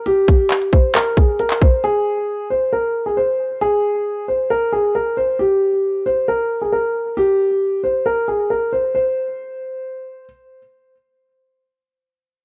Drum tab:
HH |x-x-xxx-x-x-x-x-|----------------|----------------|----------------|
CP |----x---x----x--|----------------|----------------|----------------|
BD |--o---o---o---o-|----------------|----------------|----------------|

HH |----------------|----------------|----------------|
CP |----------------|----------------|----------------|
BD |----------------|----------------|----------------|